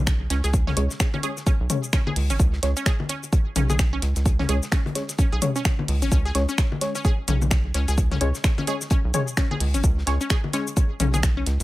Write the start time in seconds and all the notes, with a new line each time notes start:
Already playing: B1
0.07 finger snap, kick, snare, closed hi-hat, shaker
0.30 C#2 C#4, snare, closed hi-hat
0.44 C#2 G#4, snare, closed hi-hat, shaker
0.53 kick, closed hi-hat, shaker
0.67 C#4, snare, high tom
0.77 C#2 G#3 C#4 C#5, closed hi-hat
0.91 snare, shaker
1.00 finger snap, kick, snare, closed hi-hat, shaker
1.14 C#4, closed hi-hat, low conga
1.23 G#3 C#4 G#4 C#5, closed hi-hat, shaker
1.37 snare, shaker
1.47 C#4, kick, closed hi-hat, shaker
1.60 B1
1.70 G#3 C#4 C#5, closed hi-hat, high tom, shaker
1.84 shaker
1.93 C#4, finger snap, kick, snare, closed hi-hat, shaker
2.07 G#4, low conga
2.16 C#2, closed hi-hat, open hi-hat
2.30 G#1 C#4, closed hi-hat, shaker
2.39 C#2, kick, closed hi-hat, shaker
2.53 snare
2.63 C#2 G#3 C#4 C#5, snare, closed hi-hat
2.77 C#4, shaker
2.86 G#4, finger snap, kick, snare, closed hi-hat, shaker
3.00 low conga
3.09 C#4, closed hi-hat, shaker
3.23 closed hi-hat, shaker
3.33 kick, closed hi-hat, shaker
3.56 B1 C#4, closed hi-hat, high tom, shaker
3.70 G#4, low conga, shaker
3.79 finger snap, kick, snare, closed hi-hat, shaker
3.93 C#4
4.02 C#2, snare, closed hi-hat
4.16 C#2, snare, closed hi-hat, shaker
4.25 kick, closed hi-hat, shaker
4.39 C#4, snare, high tom
4.49 C#2 G#3 C#4 G#4 C#5, closed hi-hat, shaker
4.63 snare, shaker
4.72 C#4, finger snap, kick, snare, closed hi-hat, shaker
4.86 closed hi-hat, low conga
4.95 G#3 C#4 C#5, snare, closed hi-hat, shaker
5.09 snare, closed hi-hat, shaker
5.18 C#4, kick, closed hi-hat, shaker
5.32 B1 G#4
5.42 G#3 C#4 C#5, closed hi-hat, high tom, shaker
5.56 C#4, shaker
5.65 finger snap, kick, snare, closed hi-hat, shaker
5.79 low conga
5.88 C#2, closed hi-hat, open hi-hat
6.02 G#1 C#4, closed hi-hat, shaker
6.12 C#2 C#4, kick, closed hi-hat, shaker
6.25 G#4, snare
6.35 C#2 G#3 C#4 C#5, snare, closed hi-hat
6.49 C#4, shaker
6.58 finger snap, kick, snare, closed hi-hat, shaker
6.72 low conga
6.81 G#3 C#4 C#5, snare, closed hi-hat, shaker
6.95 C#4, closed hi-hat, shaker
7.05 G#4, kick, closed hi-hat, shaker
7.28 B1 C#4, closed hi-hat, high tom, shaker
7.42 low conga, shaker
7.51 finger snap, kick, snare, closed hi-hat, shaker
7.74 C#2 C#4, snare, closed hi-hat
7.88 C#2 G#4, snare, closed hi-hat, shaker
7.98 kick, closed hi-hat, shaker
8.11 C#4, snare, high tom
8.21 C#2 G#3 C#4 C#5, closed hi-hat
8.35 snare, shaker
8.44 finger snap, kick, snare, closed hi-hat, shaker
8.58 C#4, closed hi-hat, low conga
8.67 G#3 C#4 G#4 C#5, closed hi-hat, shaker
8.81 snare, shaker
8.90 C#4, kick, closed hi-hat, shaker
9.04 B1
9.14 G#3 C#4 C#5, closed hi-hat, high tom, shaker
9.28 shaker
9.37 C#4, finger snap, kick, snare, closed hi-hat, shaker
9.51 G#4, low conga
9.60 C#2, closed hi-hat, open hi-hat
9.74 G#1 C#4, closed hi-hat, shaker
9.84 C#2, kick, closed hi-hat, shaker
9.98 snare
10.06 C#2 G#3 C#4 C#5, snare, closed hi-hat
10.21 C#4, shaker
10.30 G#4, finger snap, kick, snare, closed hi-hat, shaker
10.44 low conga
10.53 G#3 C#4 C#5, snare, closed hi-hat, shaker
10.67 closed hi-hat, shaker
10.76 kick, closed hi-hat, shaker
11.00 B1 C#4, closed hi-hat, high tom, shaker
11.14 G#4, low conga, shaker
11.23 finger snap, kick, snare, closed hi-hat, shaker
11.37 C#4
11.46 C#2, snare, closed hi-hat
11.60 snare